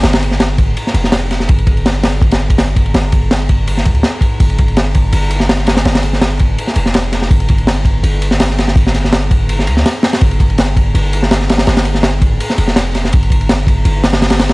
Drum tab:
RD |xxx-x-x-x-x-x-x-|xxxxx-x-xx-xx-xx|x-x-x-x-x-xxx-x-|xxxxx-x-x-x-x-xx|
SD |ooooo----o-oo-oo|----o-o--o--o---|o---o----o--o---|----o------ooooo|
BD |------o---------|o-o-----o--o--o-|--o---o---o---o-|o-o---o---------|

RD |xxx-x-x-x-x-x-x-|xxxxx-x-x-x-x-x-|x-x-x-x-x-x-x-xx|xxxxx-x-x-x-x-xx|
SD |ooooo----o-oo-oo|----o------ooooo|-oooo----o-oo-oo|----o------ooooo|
BD |------o---------|o-o---o---------|o-----o---------|o-o---o---------|

RD |xxx-x-x-x-x-x-x-|xxxxx-x-x-xxxxxx|
SD |ooooo----o-oo-oo|----o-----oooooo|
BD |------o---------|o-o---o---------|